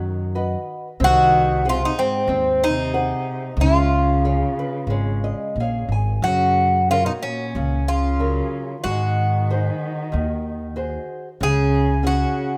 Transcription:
0.00 0.54 F#2 medium
0.00 0.62 D#3 medium
0.00 0.34 F#3 medium
0.00 0.63 F#4 medium
0.35 0.87 F#4 soft
0.35 0.87 B4 soft
0.35 0.87 D#5 medium
1.00 1.84 C2 loud
1.00 1.62 D#3 loud
1.00 1.62 C4 medium
1.04 1.68 F#4 loud
1.65 1.81 C3 medium
1.65 2.16 G#4 medium
1.65 2.16 C5 medium
1.65 2.16 F#5 medium
1.69 1.82 F4 loud
1.85 1.98 C3 medium
1.85 1.99 D#4 medium
1.99 2.59 G#2 medium
1.99 2.64 C4 medium
2.28 3.12 D#2 medium
2.28 2.91 C4 medium
2.64 3.55 C3 medium
2.64 3.61 D#4 medium
2.94 3.45 G#4 soft
2.94 3.45 C5 soft
2.94 3.45 F#5 medium
3.57 4.42 C#2 loud
3.57 5.85 C#3 medium
3.57 4.21 C#4 medium
3.61 5.87 F4 medium
4.25 4.76 G#4 soft
4.25 4.59 C#5 soft
4.25 4.77 F5 medium
4.59 4.88 B4 medium
4.87 5.31 G#1 medium
4.87 5.54 G#3 medium
4.87 5.20 C#5 medium
5.24 5.54 D#5 medium
5.56 5.86 A#1 medium
5.60 6.12 G#4 soft
5.60 6.12 C#5 soft
5.60 5.89 F5 medium
5.88 6.19 G#1 medium
5.88 6.22 G#5 medium
6.22 7.08 F#2 medium
6.22 6.85 C#3 medium
6.22 6.88 F#3 medium
6.22 6.90 F#4 loud
6.88 7.03 C#3 medium
6.88 7.06 F4 medium
6.88 7.42 F#4 soft
6.88 7.42 A#4 soft
6.88 7.43 C#5 medium
7.04 7.11 B2 medium
7.04 7.11 D#4 medium
7.19 7.81 A#2 medium
7.19 7.89 C#4 medium
7.55 8.40 C#2 medium
7.55 8.18 C#3 medium
7.87 8.81 C#3 medium
7.87 8.82 F4 medium
8.19 8.72 F#3 soft
8.19 8.72 A#4 soft
8.19 8.72 C#5 soft
8.82 9.68 G#2 loud
8.82 11.04 D#3 medium
8.82 9.48 G#3 medium
8.82 11.05 F#4 medium
9.50 10.01 F#4 medium
9.50 10.01 G#4 soft
9.50 10.02 C5 medium
10.12 10.97 D#2 medium
10.12 10.75 D#3 medium
10.76 11.28 F#4 soft
10.76 11.27 G#4 soft
10.76 11.28 C5 medium
11.40 12.24 C#2 medium
11.40 12.03 C#3 medium
11.40 12.02 C#3 loud
11.40 12.02 G#4 loud
12.03 12.57 C#3 medium
12.03 12.55 C#4 medium
12.03 12.55 F#4 soft
12.03 12.57 F#4 medium
12.03 12.56 G#4 medium

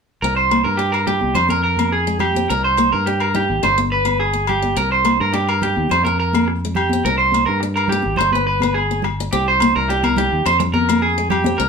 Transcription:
0.22 0.63 C2 medium
0.22 0.47 C4 medium
0.22 0.36 A#4 medium
0.36 0.64 C5 medium
0.51 0.75 A#3 medium
0.51 low agogo medium
0.64 1.19 G2 medium
0.64 0.78 A#4 medium
0.77 1.03 D4 medium
0.77 0.92 G4 medium
0.92 1.06 A#4 medium
0.92 low agogo soft
1.07 1.31 D#4 medium
1.07 1.34 G4 medium
1.07 low conga medium
1.21 1.35 C2 medium
1.21 high conga medium
1.35 2.46 F2 medium
1.35 1.48 D4 medium
1.35 1.49 C5 medium
1.35 low conga medium
1.35 low agogo medium
1.49 1.74 C4 medium
1.49 1.62 A#4 medium
1.49 high conga medium
1.64 1.91 A#4 medium
1.77 2.03 A#3 medium
1.77 high conga medium
1.77 low agogo medium
1.92 2.20 G#4 medium
2.07 2.31 G#3 medium
2.19 2.48 G4 medium
2.19 low conga medium
2.19 low agogo medium
2.35 2.48 C4 medium
2.35 high conga medium
2.50 2.91 C2 medium
2.50 2.74 C4 medium
2.50 2.64 A#4 medium
2.64 2.91 C5 medium
2.77 3.02 A#3 medium
2.77 low agogo medium
2.92 3.47 G2 medium
2.92 3.06 A#4 medium
3.06 3.31 D4 medium
3.06 3.20 G4 medium
3.20 3.34 A#4 medium
3.20 low agogo soft
3.34 3.59 D#4 medium
3.34 3.62 G4 medium
3.34 low conga medium
3.49 3.63 G#1 medium
3.49 high conga soft
3.63 4.74 G1 medium
3.63 3.75 D4 medium
3.63 3.78 C5 medium
3.63 low conga medium
3.63 low agogo soft
3.78 4.02 C4 medium
3.78 high conga medium
3.92 4.19 B4 medium
4.05 4.30 B3 medium
4.05 high conga medium
4.05 low agogo medium
4.20 4.47 G#4 medium
4.33 4.58 B3 medium
4.47 4.76 G4 medium
4.47 low conga medium
4.47 low agogo medium
4.62 4.75 D4 medium
4.62 high conga medium
4.76 5.18 C2 medium
4.76 5.01 C4 medium
4.76 4.91 A#4 medium
4.92 5.19 C5 medium
5.05 5.29 A#3 medium
5.05 low agogo medium
5.20 5.74 G2 medium
5.20 5.34 A#4 medium
5.33 5.58 D4 medium
5.33 5.48 G4 medium
5.49 5.62 A#4 medium
5.49 low agogo medium
5.62 5.87 D#4 medium
5.62 5.90 G4 medium
5.62 low conga medium
5.76 5.90 D#2 medium
5.76 high conga soft
5.89 7.01 F2 medium
5.89 6.04 D4 medium
5.89 6.04 C5 medium
5.89 low conga medium
5.89 low agogo medium
6.05 6.30 C4 medium
6.05 6.18 A#4 medium
6.05 high conga medium
6.20 6.47 A#4 medium
6.33 6.59 A#3 medium
6.33 high conga medium
6.33 low agogo medium
6.48 muted clean electric guitar stroke medium
6.65 6.88 G#3 medium
6.75 7.03 G4 medium
6.75 low conga medium
6.75 low agogo medium
6.89 7.04 C4 medium
6.89 high conga medium
7.05 7.45 C2 medium
7.05 7.29 C4 medium
7.05 7.17 A#4 medium
7.18 7.46 C5 medium
7.32 7.58 A#3 medium
7.32 high conga medium
7.32 low agogo medium
7.46 8.02 G2 medium
7.46 7.60 A#4 medium
7.60 7.86 D4 medium
7.60 muted clean electric guitar stroke medium
7.76 7.89 A#4 medium
7.76 low agogo medium
7.88 8.17 G4 medium
7.88 low conga medium
7.92 8.15 D#4 medium
8.02 8.18 G#1 medium
8.02 high conga soft
8.16 9.28 G1 medium
8.16 8.32 C5 medium
8.16 low conga medium
8.16 low agogo medium
8.21 8.32 D4 medium
8.32 8.58 C4 medium
8.32 8.46 B4 medium
8.32 high conga medium
8.47 8.74 B4 medium
8.60 8.86 B3 medium
8.60 high conga medium
8.60 low agogo medium
8.74 9.02 G#4 medium
8.91 9.14 B3 medium
9.02 muted clean electric guitar stroke medium
9.02 low conga medium
9.02 low agogo medium
9.20 9.31 D4 medium
9.32 9.73 C2 medium
9.32 9.56 C4 medium
9.32 9.46 G4 medium
9.48 9.74 C5 medium
9.60 9.85 A#3 medium
9.60 high conga medium
9.60 low agogo medium
9.76 10.29 C2 medium
9.76 9.89 A#4 medium
9.89 10.14 D4 medium
9.89 10.03 G4 medium
10.03 10.17 A#4 medium
10.03 high conga medium
10.03 low agogo medium
10.16 10.42 D#4 medium
10.16 10.44 G4 medium
10.16 low conga medium
10.32 10.45 D#2 medium
10.46 11.55 F2 medium
10.46 10.59 C5 medium
10.46 muted steel-string acoustic guitar stroke medium
10.46 low agogo medium
10.60 10.84 C4 medium
10.60 muted clean electric guitar stroke medium
10.60 low conga medium
10.74 11.01 A#4 medium
10.74 high conga medium
10.89 11.13 A#3 medium
10.89 low agogo medium
11.02 11.29 G#4 medium
11.18 11.41 G#3 medium
11.30 11.57 G4 medium
11.30 low conga medium
11.30 low agogo medium
11.44 11.57 C4 medium
11.44 high conga medium
11.58 11.69 C2 medium
11.58 11.69 C4 medium
11.58 11.69 A#4 medium

